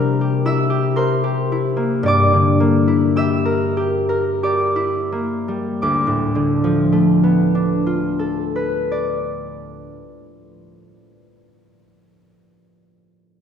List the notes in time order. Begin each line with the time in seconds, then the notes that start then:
Already playing: C3 G3 A#3 D4 E4 G4 A#4 D5 A#5 C6 D6 A#6 C7
0.21 G4
0.45 E4 E5 E6
0.70 G4
0.96 A#4 C5 C6
1.24 G4
1.52 E4
1.77 A#3
2.03 G2 D5
2.08 D6
2.33 D3
2.60 A#3
2.88 E4
3.16 G4 E5 E6
3.45 A#4
3.77 G4
4.09 A#4
4.43 G4 D5 D6
4.76 E4
5.12 A#3
5.48 G3
5.82 D2 D6
6.07 A2
6.35 D3
6.64 F3
6.92 A3
7.24 B3
7.55 D4
7.86 F4
8.19 A4
8.56 B4
8.92 D5